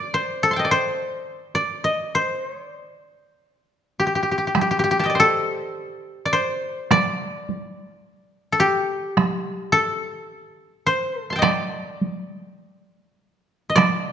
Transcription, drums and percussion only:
4.55 taiko rim, taiko high
6.91 taiko rim, taiko high
7.49 taiko high
9.17 taiko rim, taiko high
11.43 taiko rim, taiko high
12.01 taiko high
13.78 taiko rim, taiko high

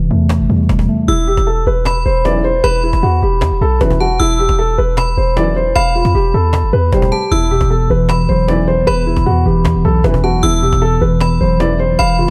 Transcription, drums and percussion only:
0.04 cajon slap
0.29 cajon slap
0.40 cajon slap
0.45 cajon slap
0.50 cajon slap
0.56 cajon slap
0.63 cajon slap
0.69 cajon slap
0.79 cajon bass
0.89 cajon slap
1.08 cajon slap
1.28 cajon slap
1.37 cajon slap
1.47 cajon slap
1.67 cajon slap
1.85 cajon slap
2.06 cajon slap
2.25 cajon slap
2.38 cajon slap
2.45 cajon slap
2.64 cajon slap
2.84 cajon slap
2.93 cajon slap
3.03 cajon slap
3.41 cajon slap
3.56 cajon slap
3.61 cajon slap
3.81 cajon slap
3.87 cajon bass, cajon slap
3.94 cajon slap
4.00 cajon slap
4.07 cajon slap
4.13 cajon slap
4.20 cajon slap
4.39 cajon slap
4.49 cajon slap
4.59 cajon slap
4.78 cajon slap
4.97 cajon slap
5.17 cajon slap
5.37 cajon slap
5.50 cajon slap
5.56 cajon slap
5.76 cajon slap
5.95 cajon slap
6.02 cajon slap
6.05 cajon slap
6.08 cajon slap
6.15 cajon slap
6.21 cajon slap
6.28 cajon slap
6.53 cajon slap
6.58 cajon slap
6.68 cajon slap
6.73 cajon slap
6.80 cajon slap
6.86 cajon slap
6.93 cajon slap
7.02 cajon bass
7.31 cajon slap
7.51 cajon slap
7.61 cajon slap
7.71 cajon slap
7.90 cajon slap
8.09 cajon slap
8.29 cajon slap
8.48 cajon slap
8.61 cajon slap
8.68 cajon slap
8.87 cajon slap
9.07 cajon slap
9.16 cajon slap
9.65 cajon slap
9.80 cajon slap
9.85 cajon slap
10.04 cajon slap
10.11 cajon bass, cajon slap
10.17 cajon slap
10.24 cajon slap
10.30 cajon slap
10.37 cajon slap
10.43 cajon slap
10.63 cajon slap
10.72 cajon slap
10.82 cajon slap
11.02 cajon slap
11.20 cajon slap
11.41 cajon slap
11.60 cajon slap
11.73 cajon slap
11.80 cajon slap
12.19 cajon slap
12.25 cajon slap

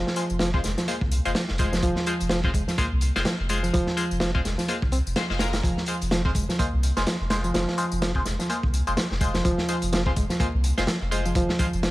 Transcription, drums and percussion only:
0.07 snare
0.16 closed hi-hat, tambourine
0.30 tambourine
0.39 snare, closed hi-hat, tambourine
0.54 kick
0.64 snare, closed hi-hat, tambourine
0.78 snare, tambourine
0.88 closed hi-hat, tambourine
1.01 kick
1.11 closed hi-hat, tambourine
1.25 tambourine
1.35 snare, closed hi-hat, tambourine
1.48 snare
1.58 kick, closed hi-hat, tambourine
1.73 snare, tambourine
1.83 kick, closed hi-hat, tambourine
1.96 snare
2.06 closed hi-hat, tambourine
2.20 closed hi-hat, tambourine
2.29 snare, closed hi-hat, tambourine
2.44 kick
2.54 kick, closed hi-hat, tambourine
2.68 snare, tambourine
2.78 kick, closed hi-hat, tambourine
3.01 closed hi-hat, tambourine
3.16 snare, tambourine
3.25 snare, closed hi-hat, tambourine
3.49 closed hi-hat, tambourine
3.64 tambourine
3.74 kick, closed hi-hat, tambourine
3.87 snare
3.97 closed hi-hat, tambourine
4.11 tambourine
4.20 snare, closed hi-hat, tambourine
4.35 kick
4.45 snare, closed hi-hat, tambourine
4.59 snare, tambourine
4.68 closed hi-hat, tambourine
4.82 kick
4.92 closed hi-hat, tambourine
5.07 tambourine
5.16 snare, closed hi-hat, tambourine
5.30 snare
5.39 snare, closed hi-hat, tambourine
5.53 snare, closed hi-hat, tambourine
5.64 kick, closed hi-hat, tambourine
5.77 snare
5.86 closed hi-hat, tambourine
6.01 closed hi-hat, tambourine
6.11 snare, closed hi-hat, tambourine
6.25 kick
6.35 kick, closed hi-hat, tambourine
6.49 snare, tambourine
6.59 kick, closed hi-hat, tambourine
6.83 closed hi-hat, tambourine
6.97 snare, tambourine
7.07 snare, closed hi-hat, tambourine
7.30 snare, closed hi-hat, tambourine
7.44 tambourine
7.54 snare, closed hi-hat, tambourine
7.68 snare
7.78 closed hi-hat, tambourine
7.92 tambourine
8.02 snare, closed hi-hat, tambourine
8.15 kick
8.25 snare, closed hi-hat, tambourine
8.40 snare, tambourine
8.49 closed hi-hat, tambourine
8.63 kick
8.74 closed hi-hat, tambourine
8.87 tambourine
8.97 snare, closed hi-hat, tambourine
9.11 snare
9.21 kick, closed hi-hat, tambourine
9.34 snare, tambourine
9.45 kick, closed hi-hat, tambourine
9.58 snare
9.69 closed hi-hat, tambourine
9.82 closed hi-hat, tambourine
9.93 snare, closed hi-hat, tambourine
10.06 kick
10.16 kick, closed hi-hat, tambourine
10.30 snare, tambourine
10.40 kick, closed hi-hat, tambourine
10.64 closed hi-hat, tambourine
10.78 snare, tambourine
10.87 snare, closed hi-hat, tambourine
11.12 closed hi-hat, tambourine
11.26 tambourine
11.35 kick, closed hi-hat, tambourine
11.49 snare
11.59 kick, closed hi-hat, tambourine
11.73 tambourine
11.83 snare, closed hi-hat, tambourine

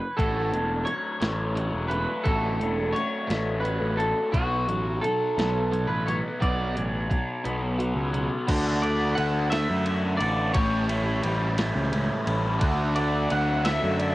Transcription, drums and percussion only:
0.19 kick, closed hi-hat
0.54 closed hi-hat
0.87 closed hi-hat
1.22 snare, closed hi-hat
1.57 closed hi-hat
1.91 closed hi-hat
2.26 kick, closed hi-hat
2.61 closed hi-hat
2.96 closed hi-hat
3.30 snare, closed hi-hat
3.65 closed hi-hat
4.00 closed hi-hat
4.34 kick, closed hi-hat
4.69 closed hi-hat
5.04 closed hi-hat
5.39 snare, closed hi-hat
5.73 closed hi-hat
6.08 closed hi-hat
6.42 kick, closed hi-hat
6.77 closed hi-hat
7.11 kick, closed hi-hat
7.45 closed hi-hat
7.80 closed hi-hat
8.14 closed hi-hat
8.48 kick, crash, ride
8.83 ride
9.18 ride
9.52 snare, ride
9.86 ride
10.21 ride
10.54 kick, ride
10.89 ride
11.24 ride
11.58 snare, ride
11.93 ride
12.27 ride
12.61 kick, ride
12.96 ride
13.30 ride
13.65 snare, ride
14.00 ride

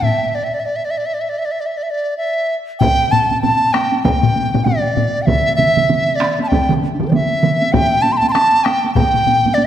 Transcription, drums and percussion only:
0.04 taiko low-mid, taiko high
0.23 taiko high
2.81 taiko, taiko low-mid, taiko high
3.12 taiko low-mid, taiko high
3.31 taiko low-mid, taiko high
3.43 taiko low-mid, taiko high
3.74 taiko rim, taiko high
3.92 taiko high
4.05 taiko, taiko high
4.23 taiko low-mid
4.36 taiko high
4.54 taiko low-mid, taiko high
4.67 taiko low-mid, taiko high
4.97 taiko low-mid, taiko high
5.27 taiko, taiko mid, taiko high
5.59 taiko mid, taiko high
5.77 taiko mid, taiko high
5.90 taiko mid, taiko high
6.20 taiko rim, taiko high
6.39 taiko high
6.52 taiko, taiko high
6.69 taiko mid
6.82 taiko high
7.00 taiko mid
7.12 taiko mid, taiko high
7.43 taiko mid, taiko high
7.62 taiko high
7.73 taiko, taiko low-mid, taiko high
8.04 taiko high
8.23 taiko high
8.35 taiko rim, taiko high
8.66 taiko rim, taiko high
8.85 taiko high
8.95 taiko, taiko low-mid, taiko high
9.14 taiko low-mid
9.26 taiko low-mid, taiko high
9.45 taiko low-mid, taiko high
9.58 taiko high

